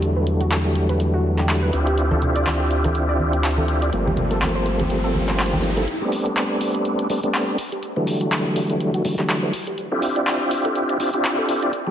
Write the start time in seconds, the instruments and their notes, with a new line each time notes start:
Already playing: sub bass E2, tonewheel organ D3 E3 F#3 G3 A3
0.02 closed hi-hat
0.16 synth pluck B4
0.27 closed hi-hat
0.41 synth pluck F#4, closed hi-hat
0.51 clap, closed hi-hat
0.65 synth pluck G4
0.76 closed hi-hat
0.89 synth pluck B4, closed hi-hat
1.00 closed hi-hat
1.14 synth pluck F#4
1.38 synth pluck G4, clap, closed hi-hat
1.49 clap, closed hi-hat
1.56 closed hi-hat
1.62 synth pluck B4
1.73 sub bass D2, tonewheel organ C4 D4 E4 F4 G4, closed hi-hat
1.87 synth pluck G4, closed hi-hat
1.98 closed hi-hat, riser
2.11 synth pluck A4, high conga
2.22 closed hi-hat, low conga
2.36 synth pluck D5, closed hi-hat
2.46 clap, closed hi-hat, high conga
2.60 synth pluck G4
2.71 closed hi-hat
2.84 synth pluck A4, closed hi-hat, high conga
2.95 closed hi-hat
3.09 synth pluck D5
3.20 high conga
3.33 synth pluck G4, closed hi-hat
3.44 clap, closed hi-hat
3.51 closed hi-hat
3.58 synth pluck A4, high conga
3.68 closed hi-hat
3.82 synth pluck D5, closed hi-hat
3.93 sub bass G1, tonewheel organ F3 G3 A3 A#3 C4, closed hi-hat
4.06 synth pluck G4, high conga
4.17 closed hi-hat, low conga
4.31 synth pluck A4, closed hi-hat
4.41 clap, closed hi-hat, high conga
4.55 synth pluck C5
4.66 closed hi-hat
4.80 synth pluck G4, closed hi-hat, high conga
4.90 closed hi-hat
5.04 synth pluck A4
5.14 high conga
5.28 synth pluck C5, clap, closed hi-hat
5.39 clap, closed hi-hat
5.46 closed hi-hat
5.53 synth pluck G4, high conga
5.63 closed hi-hat
5.77 synth pluck A4, closed hi-hat
5.88 closed hi-hat
6.01 tonewheel organ G3 A3 B3 C4 D4, synth pluck G4
6.12 open hi-hat
6.26 synth pluck A4, closed hi-hat
6.36 clap, closed hi-hat
6.50 synth pluck C5
6.61 open hi-hat
6.75 synth pluck G4, closed hi-hat
6.85 closed hi-hat
6.99 synth pluck A4, closed hi-hat
7.10 tonewheel organ G3 A3 B3 C4 D4, open hi-hat
7.23 tonewheel organ G3 A3 B3 C4 D4, synth pluck C5, closed hi-hat
7.34 clap, closed hi-hat
7.48 synth pluck G4
7.58 open hi-hat
7.72 synth pluck G4, closed hi-hat
7.83 closed hi-hat
7.96 tonewheel organ D3 E3 F#3 G3 A3, synth pluck B4
8.07 open hi-hat
8.21 synth pluck F#4, closed hi-hat
8.32 clap, closed hi-hat
8.45 synth pluck G4
8.56 open hi-hat
8.70 synth pluck B4, closed hi-hat
8.80 closed hi-hat
8.94 synth pluck F#4, closed hi-hat
9.05 tonewheel organ D3 E3 F#3 G3 A3, open hi-hat
9.18 tonewheel organ D3 E3 F#3 G3 A3, synth pluck G4, clap, closed hi-hat
9.29 clap, closed hi-hat
9.43 synth pluck B4
9.53 open hi-hat
9.67 synth pluck G4, closed hi-hat
9.78 closed hi-hat
9.92 tonewheel organ C4 D4 E4 F4 G4, synth pluck A4
10.02 open hi-hat
10.16 synth pluck D5, closed hi-hat
10.27 clap, closed hi-hat
10.41 synth pluck G4
10.51 open hi-hat
10.65 synth pluck A4, closed hi-hat
10.76 closed hi-hat
10.89 synth pluck D5, closed hi-hat
11.00 tonewheel organ C4 D4 E4 F4 G4, open hi-hat
11.14 tonewheel organ C4 D4 E4 F4 G4, synth pluck G4, closed hi-hat
11.24 clap, closed hi-hat
11.38 synth pluck A4
11.49 open hi-hat
11.63 synth pluck D5, closed hi-hat
11.73 closed hi-hat
11.87 tonewheel organ F3 G3 A3 A#3 C4, synth pluck G4